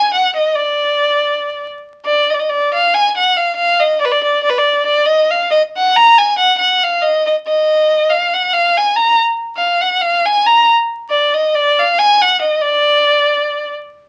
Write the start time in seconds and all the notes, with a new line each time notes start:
Already playing: G#5
0.14 F#5
0.35 D#5
0.55 D5
2.05 D5
2.30 D5 D#5
2.39 D#5
2.49 D5
2.74 F5
2.94 G#5
3.17 F#5
3.36 F5
3.56 F5
3.80 D#5
4.00 D5
4.05 B4
4.12 D5
4.24 D5
4.43 D5
4.49 B4
4.58 D5
4.86 D5
5.06 D#5
5.30 F5
5.51 D#5
5.77 F#5
5.96 A#5
6.18 G#5
6.38 F#5
6.58 F#5
6.83 F5
7.02 D#5
7.26 D#5
7.47 D#5
8.09 F5
8.34 F#5
8.53 F5
8.77 G#5
8.96 A#5
9.57 F5
9.81 F#5
10.01 F5
10.25 G#5
10.46 A#5
11.10 D5
11.34 D#5
11.55 D5
11.79 F5
11.98 G#5
12.21 F#5
12.42 D#5
12.61 D5